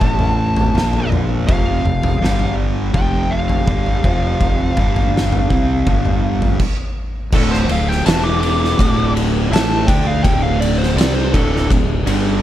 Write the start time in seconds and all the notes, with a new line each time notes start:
Already playing: A5
0.01 A1 A2 E3 A3, kick, floor tom
0.19 mid tom
0.56 floor tom
0.74 A#1 A#2 F3 A#3, snare, mid tom
0.93 floor tom
1.12 mid tom
1.47 F1 F2 C3 F3 F5, kick, floor tom
1.84 F1 F2 C3, mid tom
2.03 floor tom
2.20 G1 G2 D3 G3
2.24 snare
2.39 floor tom
2.94 F1 F2 C3 F3 G5, kick, floor tom
3.31 F5
3.49 floor tom
3.67 G1 G2 D3 G3, kick, mid tom
3.86 floor tom
4.04 F1 F2 C3 F3, kick, mid tom
4.41 kick, floor tom
4.77 G1 G2 D3 G3, kick, mid tom
4.96 floor tom
5.17 snare
5.32 floor tom
5.50 C2 C3 G3 C4, kick
5.86 G1 G2 D3 G3, kick, floor tom
6.05 mid tom
6.42 floor tom
6.60 kick, crash
7.32 D1 D2 A2 D3 A4, kick, crash
7.52 C5, snare
7.68 D1 D2 A2 F5, ride
7.89 G5, snare
8.06 E1 E2 B2 E3 A5, snare, ride
8.24 D6
8.41 D6, ride
8.64 snare
8.79 D1 D2 A2 D3, kick, ride
9.17 ride
9.51 A1 A2 E3 A3 A5, ride
9.56 snare
9.87 D2 D3 A3 D4 G5, kick, ride
10.07 F5
10.24 D1 D2 A2 D3 G5, kick, ride
10.42 F5
10.60 D5, ride
10.78 C5
10.83 snare
10.95 C2 C3 G3 C4 D5, ride
11.01 snare
11.15 C5
11.33 D1 D2 A2 D3 A4, kick, ride
11.56 snare
11.70 D1 D2 A2, kick, ride
12.06 G1 G2 D3 G3, ride